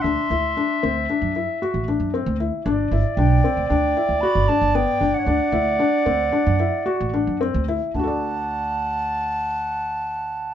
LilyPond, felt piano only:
\new Staff \with { instrumentName = "Felt piano" } { \time 5/4 \key d \mixolydian \tempo 4 = 114 d'8 e'8 d'8 c'8 d'8 e'8 fis'8 d'8 c'8 e'8 | d'8 e'8 d'8 c'8 d'8 e'8 fis'8 d'8 b8 d'8 | d'8 e'8 d'8 c'8 d'8 e'8 fis'8 d'8 c'8 e'8 | <d' fis' a' d''>1~ <d' fis' a' d''>4 | }